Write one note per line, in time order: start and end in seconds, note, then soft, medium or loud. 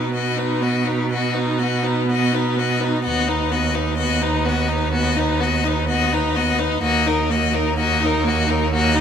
0.00 3.08 B2 medium
0.00 0.11 D#4 medium
0.00 0.14 D#4 medium
0.00 0.13 B4 medium
0.12 0.39 B3 medium
0.12 0.41 F#4 medium
0.12 0.40 D#5 medium
0.37 0.63 D#4 medium
0.37 0.65 D#4 medium
0.37 0.65 B4 medium
0.61 0.86 B3 medium
0.61 0.90 F#4 medium
0.61 0.89 D#5 medium
0.85 1.10 D#4 medium
0.85 1.12 D#4 medium
0.85 1.11 B4 medium
1.10 1.36 B3 medium
1.10 1.40 F#4 medium
1.10 1.36 D#5 medium
1.34 1.60 D#4 medium
1.34 1.60 B4 medium
1.38 1.64 D#4 medium
1.58 1.84 B3 medium
1.58 1.86 D#5 medium
1.62 1.89 F#4 medium
1.83 2.07 D#4 medium
1.83 2.09 B4 medium
1.87 2.11 D#4 medium
2.07 2.34 B3 medium
2.11 2.37 F#4 medium
2.11 2.36 D#5 medium
2.32 2.58 D#4 medium
2.32 2.62 D#4 medium
2.32 2.61 B4 medium
2.57 2.81 B3 medium
2.57 2.86 F#4 medium
2.57 2.82 D#5 medium
2.80 3.03 D#4 medium
2.80 3.04 B4 medium
2.84 3.05 D#4 medium
3.03 6.83 D#2 medium
3.03 3.29 B3 medium
3.03 3.30 F#4 medium
3.03 3.30 D#5 medium
3.28 3.53 D#4 medium
3.28 3.54 D#4 medium
3.28 3.53 B4 medium
3.51 3.75 B3 medium
3.51 3.78 F#4 medium
3.51 3.76 D#5 medium
3.74 3.98 D#4 medium
3.74 3.99 D#4 medium
3.74 3.97 B4 medium
3.98 4.23 B3 medium
3.98 4.23 F#4 medium
3.98 4.24 D#5 medium
4.21 4.46 D#4 medium
4.21 4.47 D#4 medium
4.21 4.50 B4 medium
4.45 4.70 B3 medium
4.45 4.70 F#4 medium
4.45 4.74 D#5 medium
4.68 4.92 D#4 medium
4.73 4.95 B4 medium
4.93 5.18 B3 medium
4.93 5.18 F#4 medium
4.93 5.20 D#5 medium
5.16 5.42 D#4 medium
5.16 5.44 B4 medium
5.40 5.66 B3 medium
5.40 5.66 F#4 medium
5.40 5.69 D#5 medium
5.64 5.88 D#4 medium
5.64 5.88 B4 medium
5.89 6.14 B3 medium
5.89 6.15 F#4 medium
5.89 6.16 D#5 medium
6.12 6.38 D#4 medium
6.12 6.38 B4 medium
6.36 6.61 B3 medium
6.36 6.62 F#4 medium
6.36 6.60 D#5 medium
6.59 6.83 D#4 medium
6.59 6.82 D#4 medium
6.59 6.83 B4 medium
6.83 9.01 D#2 medium
6.83 7.08 A#3 medium
6.83 7.08 F#4 medium
6.83 7.09 D#5 medium
7.06 7.33 D#4 medium
7.06 7.31 D#4 medium
7.06 7.32 A#4 medium
7.30 7.54 A#3 medium
7.30 7.56 F#4 medium
7.30 7.56 D#5 medium
7.53 7.76 D#4 medium
7.53 7.78 D#4 medium
7.53 7.78 A#4 medium
7.76 8.02 A#3 medium
7.76 8.05 F#4 medium
7.76 8.07 D#5 medium
8.01 8.26 D#4 medium
8.01 8.29 D#4 medium
8.06 8.30 A#4 medium
8.24 8.49 A#3 medium
8.24 8.51 F#4 medium
8.29 8.52 D#5 medium
8.47 8.70 D#4 medium
8.47 8.73 D#4 medium
8.47 8.73 A#4 medium
8.71 8.96 A#3 medium
8.71 8.97 F#4 medium
8.71 9.01 D#5 medium
8.95 9.01 D#4 medium